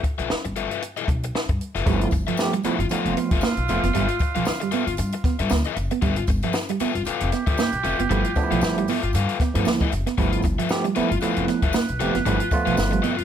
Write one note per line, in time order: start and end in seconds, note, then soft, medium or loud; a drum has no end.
0.03 muted overdriven electric guitar stroke soft
0.03 kick medium
0.03 closed hi-hat medium
0.18 0.28 B1 medium
0.18 0.29 F4 soft
0.18 0.29 A4 soft
0.18 0.29 B4 soft
0.18 0.29 E5 medium
0.18 closed hi-hat soft
0.30 muted overdriven electric guitar stroke soft
0.30 muted upright bass stroke soft
0.30 snare loud
0.45 0.65 G1 medium
0.45 muted overdriven electric guitar stroke soft
0.45 closed hi-hat soft
0.56 0.72 F4 medium
0.56 0.71 A4 medium
0.56 0.71 B4 medium
0.56 0.71 E5 medium
0.56 closed hi-hat medium
0.71 0.82 F4 soft
0.71 0.81 A4 soft
0.71 0.82 B4 soft
0.71 0.82 E5 medium
0.71 closed hi-hat soft
0.82 muted overdriven electric guitar stroke soft
0.82 closed hi-hat loud
0.97 1.07 F4 medium
0.97 1.08 A4 medium
0.97 1.08 B4 medium
0.97 1.08 E5 medium
0.97 closed hi-hat soft
1.08 1.29 B1 medium
1.08 muted overdriven electric guitar stroke soft
1.08 kick medium
1.08 closed hi-hat medium
1.23 muted overdriven electric guitar stroke soft
1.23 closed hi-hat medium
1.35 muted overdriven electric guitar stroke soft
1.35 snare loud
1.49 1.58 G2 medium
1.49 muted overdriven electric guitar stroke soft
1.49 kick medium
1.49 closed hi-hat soft
1.61 closed hi-hat medium
1.75 1.84 F#1 medium
1.75 1.84 F4 medium
1.75 1.85 A4 medium
1.75 1.85 B4 medium
1.75 1.86 E5 medium
1.75 snare soft
1.75 closed hi-hat soft
1.85 2.07 G1 loud
1.85 2.11 F3 loud
1.85 1.97 G3 medium
1.85 2.11 A3 medium
1.85 2.12 B3 medium
1.85 2.12 E4 medium
1.85 2.07 F4 medium
1.85 2.01 A4 medium
1.85 2.00 B4 medium
1.85 2.00 E5 medium
1.85 kick loud
1.85 closed hi-hat medium
1.85 tambourine soft
2.01 muted overdriven electric guitar stroke medium
2.01 closed hi-hat medium
2.11 2.24 G1 loud
2.11 muted overdriven electric guitar stroke soft
2.11 muted clean electric guitar stroke soft
2.11 kick medium
2.11 closed hi-hat medium
2.11 tambourine medium
2.27 2.36 F3 medium
2.27 2.38 F4 medium
2.27 2.38 A4 medium
2.27 2.38 B4 medium
2.27 2.38 E5 medium
2.27 closed hi-hat soft
2.37 2.53 F3 loud
2.37 2.53 A3 loud
2.37 2.53 B3 medium
2.37 2.53 G4 loud
2.37 muted overdriven electric guitar stroke soft
2.37 snare loud
2.37 tambourine loud
2.53 2.61 G3 medium
2.53 muted overdriven electric guitar stroke medium
2.53 closed hi-hat medium
2.63 2.79 F3 loud
2.63 2.79 A3 medium
2.63 2.75 B3 medium
2.63 2.79 B3 medium
2.63 2.79 E4 loud
2.63 2.86 F4 loud
2.63 2.80 A4 medium
2.63 2.79 B4 medium
2.63 2.79 E5 loud
2.63 muted upright bass stroke soft
2.63 closed hi-hat medium
2.63 tambourine medium
2.79 2.88 G1 loud
2.79 muted overdriven electric guitar stroke soft
2.79 closed hi-hat soft
2.89 3.30 F3 medium
2.89 3.30 A3 medium
2.89 3.30 B3 medium
2.89 2.98 D#4 medium
2.89 5.72 F4 loud
2.89 3.12 F4 medium
2.89 3.12 A4 medium
2.89 3.13 B4 medium
2.89 3.13 F5 medium
2.89 muted upright bass stroke medium
2.89 closed hi-hat loud
2.89 tambourine medium
2.98 3.33 F4 medium
3.05 3.14 F1 medium
3.05 closed hi-hat medium
3.17 3.27 B3 medium
3.17 muted overdriven electric guitar stroke soft
3.17 closed hi-hat loud
3.17 tambourine soft
3.31 3.40 G1 medium
3.31 3.43 F4 medium
3.31 3.43 A4 medium
3.31 3.42 B4 medium
3.31 3.43 E5 medium
3.31 kick loud
3.31 closed hi-hat medium
3.41 3.53 A#3 medium
3.41 muted overdriven electric guitar stroke soft
3.41 snare loud
3.41 tambourine medium
3.57 3.66 B1 medium
3.57 closed hi-hat soft
3.68 3.80 F1 medium
3.68 3.83 F3 medium
3.68 3.83 A3 medium
3.68 3.83 B3 medium
3.68 3.87 F4 medium
3.68 3.83 F4 loud
3.68 3.83 A4 medium
3.68 3.82 B4 medium
3.68 3.82 E5 medium
3.68 muted clean electric guitar stroke soft
3.68 closed hi-hat medium
3.68 tambourine medium
3.83 3.92 F#1 medium
3.83 3.92 B3 medium
3.83 muted overdriven electric guitar stroke medium
3.83 snare soft
3.83 closed hi-hat medium
3.94 4.06 G1 loud
3.94 4.05 G3 medium
3.94 4.16 F4 medium
3.94 4.09 A4 medium
3.94 4.09 B4 medium
3.94 4.08 E5 loud
3.94 closed hi-hat medium
3.94 tambourine soft
4.08 muted overdriven electric guitar stroke soft
4.08 closed hi-hat medium
4.19 muted overdriven electric guitar stroke soft
4.19 muted clean electric guitar stroke soft
4.19 kick medium
4.19 closed hi-hat medium
4.19 tambourine medium
4.35 4.44 B1 medium
4.35 4.44 F3 medium
4.35 4.45 F4 medium
4.35 4.46 A4 medium
4.35 4.46 B4 medium
4.35 4.46 F5 medium
4.35 closed hi-hat medium
4.45 4.67 G1 medium
4.45 muted overdriven electric guitar stroke medium
4.45 snare loud
4.45 tambourine loud
4.60 4.70 G3 medium
4.60 muted overdriven electric guitar stroke soft
4.60 closed hi-hat medium
4.71 4.84 B3 loud
4.71 4.93 F4 medium
4.71 4.86 A4 loud
4.71 4.86 B4 medium
4.71 4.86 E5 medium
4.71 closed hi-hat medium
4.71 tambourine medium
4.87 4.96 G1 medium
4.87 muted overdriven electric guitar stroke soft
4.87 closed hi-hat medium
4.97 5.10 G2 loud
4.97 muted overdriven electric guitar stroke soft
4.97 closed hi-hat loud
4.97 tambourine medium
5.12 muted overdriven electric guitar stroke soft
5.12 closed hi-hat medium
5.24 5.35 B3 medium
5.24 muted upright bass stroke medium
5.24 kick loud
5.24 snare soft
5.24 closed hi-hat medium
5.24 tambourine soft
5.39 5.48 G2 loud
5.39 5.50 F4 medium
5.39 5.51 A4 medium
5.39 5.51 B4 medium
5.39 5.51 E5 medium
5.39 closed hi-hat medium
5.50 5.62 D2 medium
5.50 5.61 A#3 medium
5.50 muted overdriven electric guitar stroke soft
5.50 snare loud
5.50 tambourine loud
5.64 5.76 F4 medium
5.64 5.76 A4 medium
5.64 5.76 B4 medium
5.64 5.77 E5 medium
5.64 closed hi-hat soft
5.76 5.88 F#1 loud
5.76 muted clean electric guitar stroke soft
5.76 muted overdriven electric guitar stroke soft
5.76 closed hi-hat medium
5.76 tambourine medium
5.91 5.99 B3 medium
5.91 muted overdriven electric guitar stroke soft
5.91 closed hi-hat medium
6.02 6.23 G1 loud
6.02 6.13 G3 medium
6.02 6.24 F4 medium
6.02 6.17 A4 medium
6.02 6.17 B4 medium
6.02 6.16 E5 medium
6.02 kick loud
6.02 closed hi-hat medium
6.02 tambourine soft
6.16 muted overdriven electric guitar stroke medium
6.16 closed hi-hat medium
6.27 6.39 G1 loud
6.27 muted clean electric guitar stroke soft
6.27 muted overdriven electric guitar stroke medium
6.27 kick medium
6.27 closed hi-hat medium
6.27 tambourine medium
6.42 6.52 F3 medium
6.42 6.54 F4 medium
6.42 6.54 A4 medium
6.42 6.55 B4 medium
6.42 6.55 E5 medium
6.42 closed hi-hat soft
6.53 muted clean electric guitar stroke soft
6.53 muted overdriven electric guitar stroke medium
6.53 snare loud
6.53 tambourine medium
6.69 6.77 G3 medium
6.69 muted overdriven electric guitar stroke soft
6.69 closed hi-hat medium
6.80 6.91 B3 loud
6.80 7.02 F4 medium
6.80 6.94 A4 medium
6.80 6.95 B4 loud
6.80 6.94 E5 loud
6.80 muted upright bass stroke soft
6.80 closed hi-hat medium
6.80 tambourine medium
6.95 7.04 G1 medium
6.95 muted overdriven electric guitar stroke soft
6.95 closed hi-hat medium
7.05 7.28 F4 medium
7.05 9.88 G4 loud
7.05 7.28 A4 medium
7.05 7.28 B4 medium
7.05 7.28 F5 medium
7.05 muted upright bass stroke medium
7.05 closed hi-hat loud
7.05 tambourine medium
7.20 7.30 F1 medium
7.20 closed hi-hat medium
7.32 7.43 B3 medium
7.32 muted overdriven electric guitar stroke soft
7.32 snare soft
7.32 closed hi-hat medium
7.32 tambourine soft
7.47 7.56 G1 loud
7.47 7.57 F4 medium
7.47 7.58 A4 medium
7.47 7.58 B4 medium
7.47 7.58 E5 medium
7.47 kick loud
7.47 closed hi-hat medium
7.58 7.69 A#3 medium
7.58 muted overdriven electric guitar stroke soft
7.58 snare loud
7.58 tambourine loud
7.72 7.82 B1 medium
7.72 closed hi-hat soft
7.83 7.95 F1 medium
7.83 8.02 F4 medium
7.83 7.98 A4 medium
7.83 7.98 B4 medium
7.83 7.98 E5 medium
7.83 muted clean electric guitar stroke soft
7.83 closed hi-hat medium
7.83 tambourine medium
7.99 8.08 F#1 medium
7.99 8.08 B3 medium
7.99 muted overdriven electric guitar stroke medium
7.99 closed hi-hat medium
8.10 8.22 G1 loud
8.10 8.24 F3 medium
8.10 8.21 G3 medium
8.10 8.25 A3 medium
8.10 8.25 B3 medium
8.10 8.25 E4 loud
8.10 8.31 F4 medium
8.10 8.23 A4 medium
8.10 8.23 B4 medium
8.10 8.23 E5 medium
8.10 closed hi-hat medium
8.24 muted overdriven electric guitar stroke soft
8.24 closed hi-hat medium
8.36 8.86 F3 loud
8.36 8.87 A3 medium
8.36 8.87 B3 loud
8.36 8.44 D4 loud
8.36 muted overdriven electric guitar stroke soft
8.36 muted clean electric guitar stroke soft
8.36 kick medium
8.36 closed hi-hat medium
8.36 tambourine medium
8.43 8.90 E4 loud
8.51 8.60 B1 medium
8.51 8.59 F3 medium
8.51 8.61 F4 medium
8.51 8.62 A4 medium
8.51 8.62 B4 medium
8.51 8.63 F5 medium
8.51 closed hi-hat soft
8.61 8.82 G1 medium
8.61 muted overdriven electric guitar stroke soft
8.61 muted clean electric guitar stroke soft
8.61 snare loud
8.61 tambourine loud
8.78 8.86 G3 medium
8.78 muted overdriven electric guitar stroke soft
8.78 closed hi-hat soft
8.88 8.99 B3 medium
8.88 9.10 F4 loud
8.88 9.03 A4 loud
8.88 9.02 B4 medium
8.88 9.02 E5 loud
8.88 open hi-hat medium
8.88 tambourine medium
9.03 9.12 G1 medium
9.03 muted overdriven electric guitar stroke soft
9.03 closed hi-hat soft
9.13 9.26 G2 loud
9.13 9.36 F4 medium
9.13 9.36 A4 medium
9.13 9.37 B4 medium
9.13 9.37 F5 medium
9.13 closed hi-hat loud
9.13 tambourine medium
9.29 closed hi-hat medium
9.40 9.51 B3 medium
9.40 muted upright bass stroke soft
9.40 muted overdriven electric guitar stroke soft
9.40 kick loud
9.40 snare soft
9.40 closed hi-hat medium
9.40 tambourine soft
9.54 9.64 G2 loud
9.54 9.85 F3 medium
9.54 9.85 A3 medium
9.54 9.85 B3 medium
9.54 9.86 E4 medium
9.54 9.65 F4 soft
9.54 9.66 A4 medium
9.54 9.67 B4 medium
9.54 9.66 E5 medium
9.54 closed hi-hat medium
9.65 9.78 D2 medium
9.65 9.77 A#3 medium
9.65 muted overdriven electric guitar stroke soft
9.65 snare loud
9.65 tambourine loud
9.80 9.92 F4 medium
9.80 9.91 A4 medium
9.80 9.92 B4 medium
9.80 9.92 E5 medium
9.80 kick medium
9.80 closed hi-hat soft
9.92 10.04 F#1 loud
9.92 muted clean electric guitar stroke soft
9.92 muted overdriven electric guitar stroke soft
9.92 closed hi-hat medium
9.92 tambourine medium
10.07 10.15 B3 medium
10.07 muted overdriven electric guitar stroke soft
10.07 snare soft
10.07 closed hi-hat medium
10.18 10.38 G1 loud
10.18 10.43 F3 medium
10.18 10.29 G3 medium
10.18 10.44 A3 medium
10.18 10.44 B3 medium
10.18 10.44 E4 loud
10.18 10.40 F4 medium
10.18 10.31 A4 medium
10.18 10.31 B4 medium
10.18 10.31 E5 medium
10.18 kick loud
10.18 closed hi-hat medium
10.18 tambourine soft
10.32 muted overdriven electric guitar stroke soft
10.32 closed hi-hat medium
10.42 10.55 G1 loud
10.42 muted clean electric guitar stroke soft
10.42 muted overdriven electric guitar stroke soft
10.42 kick medium
10.42 closed hi-hat medium
10.42 tambourine medium
10.59 10.67 F3 medium
10.59 10.69 F4 medium
10.59 10.70 A4 medium
10.59 10.70 B4 medium
10.59 10.70 E5 medium
10.59 closed hi-hat medium
10.69 10.84 F3 loud
10.69 10.84 A3 medium
10.69 10.85 B3 medium
10.69 10.85 G4 loud
10.69 muted overdriven electric guitar stroke soft
10.69 snare loud
10.69 tambourine loud
10.84 10.93 G3 medium
10.84 muted overdriven electric guitar stroke soft
10.84 closed hi-hat soft
10.95 11.10 F3 medium
10.95 11.11 A3 medium
10.95 11.07 B3 loud
10.95 11.11 B3 medium
10.95 11.11 E4 loud
10.95 11.17 F4 medium
10.95 11.10 A4 medium
10.95 11.09 B4 loud
10.95 11.09 E5 loud
10.95 muted upright bass stroke soft
10.95 closed hi-hat medium
10.95 tambourine soft
11.10 11.20 G1 medium
11.10 muted overdriven electric guitar stroke medium
11.10 closed hi-hat soft
11.21 11.61 F3 medium
11.21 11.61 A3 medium
11.21 11.61 B3 medium
11.21 11.61 E4 medium
11.21 11.44 F4 medium
11.21 11.44 A4 medium
11.21 13.24 B4 loud
11.21 11.44 B4 medium
11.21 11.44 F5 medium
11.21 muted upright bass stroke medium
11.21 closed hi-hat medium
11.21 tambourine medium
11.36 11.46 F1 medium
11.36 closed hi-hat medium
11.48 11.59 B3 medium
11.48 muted overdriven electric guitar stroke soft
11.48 snare soft
11.48 closed hi-hat medium
11.48 tambourine soft
11.62 11.72 G1 medium
11.62 11.73 F4 soft
11.62 11.74 A4 medium
11.62 11.74 B4 medium
11.62 11.74 E5 medium
11.62 kick medium
11.62 closed hi-hat medium
11.73 11.85 A#3 medium
11.73 muted overdriven electric guitar stroke soft
11.73 snare loud
11.73 tambourine loud
11.88 11.98 B1 medium
11.88 closed hi-hat soft
12.00 12.11 F1 medium
12.00 12.14 F3 medium
12.00 12.15 A3 medium
12.00 12.15 B3 medium
12.00 12.18 F4 medium
12.00 12.15 G4 loud
12.00 12.14 A4 medium
12.00 12.14 B4 medium
12.00 12.14 E5 medium
12.00 muted clean electric guitar stroke soft
12.00 closed hi-hat medium
12.00 tambourine medium
12.15 12.24 F#1 medium
12.15 12.24 B3 medium
12.15 muted overdriven electric guitar stroke soft
12.15 snare soft
12.15 closed hi-hat medium
12.25 12.37 G1 loud
12.25 12.40 F3 loud
12.25 12.37 G3 medium
12.25 12.40 A3 medium
12.25 12.41 B3 medium
12.25 12.41 E4 loud
12.25 12.47 F4 loud
12.25 12.40 A4 loud
12.25 12.40 B4 loud
12.25 12.39 E5 loud
12.25 closed hi-hat medium
12.25 tambourine soft
12.40 muted overdriven electric guitar stroke medium
12.40 closed hi-hat medium
12.51 13.03 F3 loud
12.51 13.03 A3 loud
12.51 13.03 B3 loud
12.51 13.03 F4 loud
12.51 muted overdriven electric guitar stroke soft
12.51 muted clean electric guitar stroke soft
12.51 kick medium
12.51 closed hi-hat medium
12.51 tambourine medium
12.65 12.75 B1 medium
12.65 12.75 F3 medium
12.65 12.75 F4 medium
12.65 12.76 A4 medium
12.65 12.76 B4 medium
12.65 12.76 F5 medium
12.65 closed hi-hat medium
12.76 12.98 G1 medium
12.76 muted overdriven electric guitar stroke soft
12.76 snare loud
12.76 tambourine loud
12.91 13.01 G3 medium
12.91 muted overdriven electric guitar stroke medium
12.91 closed hi-hat soft
13.02 13.15 B3 medium
13.02 13.24 F4 medium
13.02 13.17 A4 loud
13.02 13.17 B4 loud
13.02 13.16 E5 loud
13.02 closed hi-hat medium
13.02 tambourine medium
13.17 13.24 G1 medium
13.17 muted overdriven electric guitar stroke medium
13.17 closed hi-hat soft